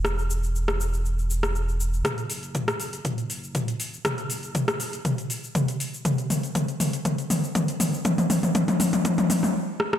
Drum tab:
HH |----------------|xxoxxxoxxxo-xxo-|xxoxxxoxxxo-xxo-|xxoxxxoxxxo-xxo-|
SH |xxxxxxxxxxxxxxxx|xxxxxxxxxxxxxxxx|xxxxxxxxxxxxxxxx|xxxxxxxxxxxxxxxx|
SD |r----r-----r----|r----r----------|r----r----------|----------------|
T2 |----------------|o---o---o---o---|o---o---o---o---|o-o-o-o-o-o-o-o-|
BD |----------------|o---o---o---o---|o---o---o---o---|o---o---o---o---|

HH |xxoxxxoxxxo-----|
SH |xxxxxxxxxxxx----|
SD |--------------rr|
T2 |oooooooooooo----|
BD |o---o---o-------|